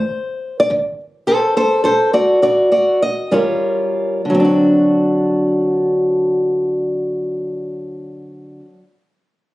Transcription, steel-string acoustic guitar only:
0.00 0.64 A3 medium
0.00 0.59 C5 medium
0.60 0.70 D5 loud
0.70 1.43 D3 medium
1.27 1.55 A4 medium
1.27 1.55 C5 medium
1.57 1.83 A4 medium
1.57 1.84 C5 loud
1.84 2.11 A4 medium
1.84 2.13 C5 medium
2.13 2.40 F#4 medium
2.13 2.42 D5 medium
2.42 2.70 F#4 medium
2.42 2.71 D5 medium
2.72 3.00 F#4 medium
2.72 3.01 D5 medium
3.02 3.33 D#5 loud
3.31 4.18 D#3 medium
3.31 4.21 G3 medium
3.31 4.21 C#4 medium
3.31 4.21 F4 medium
3.31 4.22 A#4 medium
4.25 8.60 D3 medium
4.30 8.65 F#3 medium
4.35 8.70 C4 medium
4.40 8.75 D4 medium
4.45 8.80 F#4 medium

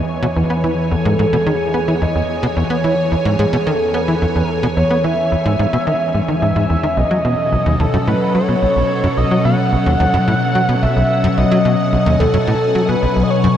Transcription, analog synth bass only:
0.23 0.27 B2 loud
0.36 0.43 E2 medium
0.50 0.57 B3 medium
0.64 0.75 E3 medium
0.91 0.96 E2 medium
1.05 1.16 G#2 loud
1.19 1.26 G#2 loud
1.33 1.37 B2 loud
1.47 1.54 D#3 medium
1.74 1.81 B3 medium
1.88 1.95 E3 medium
2.02 2.06 E2 medium
2.15 2.22 E2 medium
2.43 2.47 B2 loud
2.57 2.64 E2 medium
2.70 2.77 B3 medium
2.84 2.95 E3 medium
3.12 3.16 E2 medium
3.25 3.36 G#2 loud
3.39 3.46 G#2 loud
3.53 3.57 B2 loud
3.67 3.74 D#3 medium
3.94 4.01 B3 medium
4.08 4.15 E3 medium
4.22 4.26 E2 medium
4.36 4.43 E2 medium
4.63 4.67 B2 loud
4.77 4.84 E2 medium
4.91 4.98 B3 medium
5.04 5.15 E3 medium
5.32 5.36 E2 medium
5.45 5.56 G#2 loud
5.59 5.66 G#2 loud
5.73 5.77 B2 loud
5.87 5.94 D#3 medium
6.14 6.21 G#2 medium
6.28 6.35 D#3 medium
6.42 6.53 G#2 medium
6.56 6.66 G#2 medium
6.70 6.77 E2 medium
6.83 6.88 D#3 medium
6.97 7.04 B1 medium
7.11 7.18 F#3 medium
7.25 7.35 B2 medium
7.52 7.56 B1 medium
7.66 7.76 D#2 loud
7.80 7.87 D#2 loud
7.94 7.98 F#2 loud
8.07 8.14 A2 medium
8.35 8.42 F#3 medium
8.49 8.56 B2 medium
8.62 8.66 B1 medium
8.76 8.83 B1 medium
9.04 9.08 F#2 loud
9.17 9.24 B1 medium
9.31 9.38 F#3 medium
9.45 9.55 B2 medium
9.72 9.77 B1 medium
9.86 9.97 D#2 loud
10.00 10.07 D#2 loud
10.14 10.18 F#2 loud
10.28 10.35 A2 medium
10.55 10.62 F#3 medium
10.69 10.76 B2 medium
10.83 10.87 B1 medium
10.96 11.03 B1 medium
11.24 11.28 F#2 loud
11.37 11.44 B1 medium
11.51 11.58 F#3 medium
11.65 11.76 B2 medium
11.93 11.97 B1 medium
12.06 12.17 D#2 loud
12.20 12.27 D#2 loud
12.34 12.38 F#2 loud
12.47 12.54 A2 medium
12.75 12.82 F#3 medium
12.89 12.96 B2 medium
13.03 13.07 B1 medium
13.16 13.23 B1 medium
13.44 13.48 F#2 loud

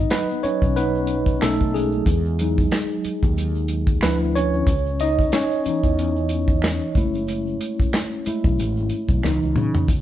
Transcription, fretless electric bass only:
0.44 muted fretless electric bass stroke soft
0.62 1.37 B1 medium
1.42 2.00 B1 medium
2.07 2.65 E2 loud
3.05 muted fretless electric bass stroke medium
3.23 3.98 D#2 loud
4.03 4.61 D2 loud
4.67 5.26 C#2 loud
5.66 muted fretless electric bass stroke soft
5.84 6.78 E2 medium
6.96 7.54 F#1 loud
8.27 muted fretless electric bass stroke soft
8.45 8.57 B1 medium
8.60 8.78 A1 loud
8.78 8.90 G#1 medium
9.09 9.22 B1 medium
9.25 9.41 C#2 loud
9.43 9.55 C#2 medium
9.57 9.86 C#3 medium
9.89 10.01 C#2 medium

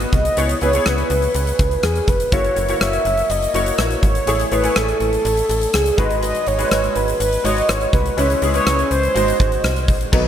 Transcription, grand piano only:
0.00 0.37 B3 medium
0.00 0.39 F#4 medium
0.00 0.38 G#4 medium
0.00 0.39 D#5 medium
0.37 0.52 B3 medium
0.37 0.53 E4 medium
0.37 0.53 G#4 medium
0.37 0.53 C#5 medium
0.61 0.69 B3 medium
0.61 0.69 E4 medium
0.61 0.70 G#4 medium
0.61 0.70 B4 medium
0.73 1.35 B3 medium
0.73 1.36 E4 medium
0.73 1.36 G#4 medium
0.73 1.36 C#5 medium
2.32 2.55 A#3 medium
2.32 2.55 E4 medium
2.32 2.56 F#4 medium
2.32 2.56 C#5 medium
2.68 3.23 A#3 medium
2.68 3.23 E4 medium
2.68 3.23 F#4 medium
2.68 3.23 C#5 medium
3.54 4.00 A#3 medium
3.54 4.01 E4 medium
3.54 4.01 F#4 medium
3.54 4.01 C#5 medium
4.27 4.43 A3 medium
4.27 4.43 E4 medium
4.27 4.43 G#4 medium
4.27 4.43 C#5 medium
4.51 4.59 A3 medium
4.51 4.59 E4 medium
4.51 4.60 G#4 medium
4.51 4.60 C#5 medium
4.63 5.25 A3 medium
4.63 5.26 E4 medium
4.63 5.26 C#5 medium
4.63 5.26 G#5 medium
5.97 6.47 G#3 medium
5.97 6.47 D#4 medium
5.97 6.47 F#4 medium
5.97 6.47 B4 medium
6.58 7.13 G#3 medium
6.58 7.13 D#4 medium
6.58 7.13 F#4 medium
6.58 7.13 B4 medium
7.44 7.91 G#3 medium
7.44 7.91 D#4 medium
7.44 7.91 F#4 medium
7.44 7.91 C#5 medium
8.17 8.33 G#3 medium
8.17 8.33 C#4 medium
8.17 8.33 E4 medium
8.17 8.33 B4 medium
8.42 8.50 G#3 medium
8.42 8.50 C#4 medium
8.42 8.50 E4 medium
8.42 8.50 G#4 medium
8.54 9.13 G#3 medium
8.54 9.15 C#4 medium
8.54 9.16 E4 medium
8.54 9.16 B4 medium
9.14 9.93 G#3 medium
9.14 9.93 D#4 medium
9.14 9.93 F#4 medium
9.14 9.94 C5 medium
10.12 10.28 F#3 medium
10.12 10.28 B3 medium
10.12 10.28 D#4 medium
10.12 10.28 B4 medium

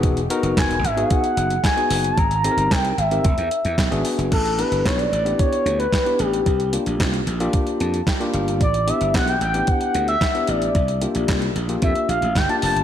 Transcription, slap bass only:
0.00 0.27 E1 medium
0.43 0.53 F#1 medium
0.57 0.77 E1 medium
0.83 1.03 G#1 loud
1.37 1.57 F#1 medium
1.90 2.11 F#1 medium
2.17 2.48 G#1 loud
2.57 2.67 G1 medium
2.71 2.91 C2 loud
2.98 3.18 G#1 loud
3.25 3.35 E1 loud
3.38 3.48 E2 loud
3.65 3.75 E2 loud
3.78 3.88 B1 medium
3.92 4.02 G#1 medium
4.18 4.28 F#1 loud
4.32 4.62 A1 loud
4.71 4.82 G1 medium
4.85 5.05 B1 medium
5.12 5.32 A1 medium
5.66 5.86 D2 medium
6.20 6.40 A1 medium
6.46 6.76 C2 loud
6.87 6.97 A#1 medium
7.00 7.20 C2 medium
7.27 7.47 A#1 loud
7.81 8.00 F2 medium
8.34 8.61 G1 medium
8.61 8.91 A1 loud
9.01 9.11 G1 medium
9.14 9.34 B1 medium
9.41 9.61 A1 loud
9.95 10.15 D2 medium
10.48 10.68 A1 medium
10.75 11.05 C2 loud
11.15 11.25 A#1 medium
11.29 11.49 C2 medium
11.56 11.75 A#1 medium
11.82 11.92 F2 loud
12.09 12.19 A#1 medium
12.22 12.32 A1 medium
12.35 12.46 G1 medium
12.63 12.73 F1 medium
12.76 12.84 G1 medium

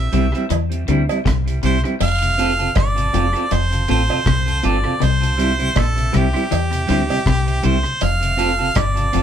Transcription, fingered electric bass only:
0.13 0.33 C2 medium
0.51 0.84 E2 medium
0.89 1.08 D2 loud
1.26 1.60 C2 medium
1.64 1.83 C2 medium
2.01 2.68 F1 loud
2.77 3.10 G1 medium
3.14 3.33 F1 medium
3.52 3.85 F1 loud
3.90 4.09 A1 medium
4.27 4.60 C2 loud
4.65 4.84 G1 loud
5.03 5.69 C2 loud
5.77 6.10 A#1 medium
6.15 6.34 C2 medium
6.53 6.85 E2 medium
6.90 7.09 D2 medium
7.27 7.60 C2 loud
7.65 7.84 C2 medium
8.02 8.69 F1 loud
8.76 9.10 G1 medium
9.15 9.23 F1 medium

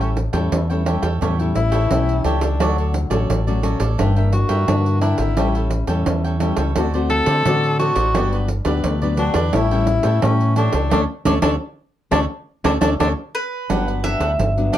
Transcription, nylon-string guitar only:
0.00 0.49 A2 medium
0.00 0.15 G3 medium
0.00 0.16 C#4 medium
0.00 0.16 E4 medium
0.33 0.63 G3 medium
0.33 0.63 C#4 medium
0.33 0.64 E4 medium
0.53 1.18 E3 medium
0.71 0.82 G3 medium
0.71 0.82 C#4 medium
0.71 0.82 E4 medium
0.87 1.07 G3 medium
0.87 1.07 C#4 medium
0.87 1.07 E4 medium
1.22 1.88 A2 medium
1.22 1.32 G3 medium
1.22 1.32 C#4 medium
1.22 1.32 E4 medium
1.40 1.86 G3 medium
1.40 1.86 C#4 medium
1.40 1.86 E4 medium
1.91 2.57 E3 medium
1.91 2.35 G3 medium
1.91 2.36 C#4 medium
1.91 2.36 E4 medium
2.61 3.26 D3 medium
2.61 3.07 F#3 medium
2.61 3.07 A3 medium
3.11 3.41 F#3 medium
3.11 3.41 A3 medium
3.11 3.41 C#4 medium
3.30 3.95 A2 soft
3.47 3.59 F#3 medium
3.47 3.59 A3 medium
3.47 3.59 C#4 medium
3.63 3.84 F#3 medium
3.63 3.84 A3 medium
3.63 3.84 C#4 medium
3.98 4.65 G2 medium
3.98 4.10 E3 medium
3.98 4.11 A#3 medium
3.98 4.11 D4 medium
4.16 4.63 E3 medium
4.16 4.63 A#3 medium
4.16 4.63 D4 medium
4.68 5.34 D3 medium
4.68 5.32 E3 medium
4.68 5.32 A#3 medium
4.68 5.32 D4 medium
5.38 6.04 A2 medium
5.38 5.84 G3 medium
5.38 5.84 C#4 medium
5.38 5.85 E4 medium
5.88 6.35 G3 medium
5.88 6.36 C#4 medium
5.88 6.36 E4 medium
6.08 6.73 E3 soft
6.41 6.71 G3 medium
6.41 6.71 C#4 medium
6.41 6.71 E4 medium
6.76 7.42 D3 medium
6.76 6.87 A3 medium
6.76 6.87 C4 medium
6.76 6.87 F#4 medium
6.95 7.41 A3 medium
6.95 7.41 C4 medium
6.95 7.41 F#4 medium
7.46 8.12 A2 medium
7.46 7.91 A3 medium
7.46 7.91 C4 medium
7.46 7.91 F#4 medium
8.15 8.81 G2 medium
8.15 8.48 F#3 medium
8.15 8.48 B3 medium
8.15 8.48 D4 medium
8.65 8.95 F#3 medium
8.65 8.96 B3 medium
8.65 8.96 D4 medium
8.84 9.50 D3 medium
9.02 9.14 F#3 medium
9.02 9.14 B3 medium
9.02 9.14 D4 medium
9.18 9.39 F#3 medium
9.18 9.39 B3 medium
9.18 9.39 D4 medium
9.54 10.20 A2 soft
9.54 9.66 G3 soft
9.54 9.66 C#4 medium
9.54 9.66 E4 medium
9.71 10.18 G3 medium
9.71 10.18 C#4 medium
9.71 10.18 E4 medium
10.23 10.89 E3 medium
10.23 10.68 G3 medium
10.23 10.68 C#4 medium
10.23 10.68 E4 medium
10.92 11.03 A3 loud
10.92 11.03 C#4 loud
10.92 11.03 D4 loud
11.25 11.37 A3 loud
11.25 11.37 C#4 loud
11.25 11.37 D4 loud
11.42 11.54 A3 medium
11.42 11.54 C#4 loud
11.42 11.54 D4 medium
12.11 12.23 A3 loud
12.11 12.23 C#4 loud
12.11 12.23 D4 loud
12.64 12.76 A3 medium
12.64 12.76 C#4 loud
12.64 12.76 D4 loud
12.81 12.93 A3 loud
12.81 12.93 C#4 medium
12.81 12.93 D4 loud
13.00 13.11 A3 medium
13.00 13.11 C#4 medium
13.00 13.11 D4 medium
13.70 14.36 G2 medium
13.70 13.99 F#3 medium
13.70 13.99 B3 medium
13.70 14.00 D4 medium
14.04 14.51 F#3 medium
14.04 14.51 B3 soft
14.04 14.51 D4 medium
14.39 14.78 D3 medium
14.57 14.78 F#3 medium
14.57 14.78 B3 medium
14.57 14.78 D4 medium

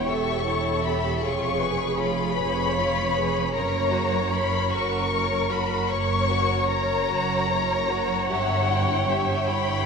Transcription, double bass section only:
0.08 1.10 E1 medium
1.24 2.25 F1 medium
2.38 3.40 F1 medium
3.54 4.59 F#1 medium
4.73 5.77 F#1 medium
5.90 6.95 F#1 medium
7.09 8.15 F#1 soft
8.29 9.34 G1 medium
9.48 9.86 G1 medium

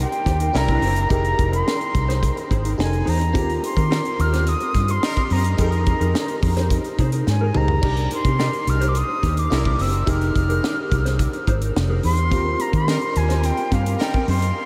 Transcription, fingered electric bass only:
0.26 0.49 D#2 medium
0.54 0.77 C2 medium
0.82 1.05 F#1 medium
1.10 1.33 F1 loud
1.39 1.61 F1 medium
1.95 2.29 C2 medium
2.51 2.73 G#1 medium
2.79 3.01 F1 medium
3.07 3.35 E2 medium
3.35 3.58 D#2 loud
3.76 3.99 D#3 medium
4.19 4.53 D#2 loud
4.74 4.97 G2 medium
5.31 5.54 F#2 medium
5.59 5.93 F2 medium
6.00 6.12 F2 medium
6.43 6.77 F2 medium
6.99 7.22 C3 medium
7.27 7.50 G#2 medium
7.55 7.78 C#2 medium
7.83 8.06 C2 loud
8.25 8.48 C3 loud
8.67 9.01 C2 medium
9.23 9.46 D#2 medium
9.51 9.74 C2 loud
9.79 10.02 F#1 medium
10.07 10.30 F1 loud
10.36 10.58 F1 loud
10.92 11.26 C2 medium
11.47 11.70 G#1 medium
11.76 11.99 F1 loud
12.04 12.31 E2 medium
12.31 12.54 D#2 loud
12.73 12.96 D#3 medium
13.16 13.50 D#2 loud
13.72 13.94 G2 medium
14.28 14.50 F#2 loud

